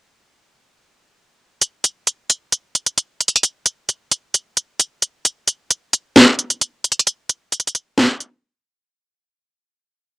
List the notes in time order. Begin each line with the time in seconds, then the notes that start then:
1.61 closed hi-hat
1.84 closed hi-hat
2.07 closed hi-hat
2.30 closed hi-hat
2.52 closed hi-hat
2.75 closed hi-hat
2.86 closed hi-hat
2.98 closed hi-hat
3.21 closed hi-hat
3.28 closed hi-hat
3.36 closed hi-hat
3.43 closed hi-hat
3.66 closed hi-hat
3.89 closed hi-hat
4.11 closed hi-hat
4.34 closed hi-hat
4.57 closed hi-hat
4.79 closed hi-hat
5.02 closed hi-hat
5.25 closed hi-hat
5.48 closed hi-hat
5.71 closed hi-hat
5.93 closed hi-hat
6.16 snare, closed hi-hat
6.39 closed hi-hat
6.50 closed hi-hat
6.61 closed hi-hat
6.84 closed hi-hat
6.92 closed hi-hat
6.99 closed hi-hat
7.07 closed hi-hat
7.29 closed hi-hat
7.52 closed hi-hat
7.60 closed hi-hat
7.67 closed hi-hat
7.75 closed hi-hat
7.98 snare, closed hi-hat
8.20 closed hi-hat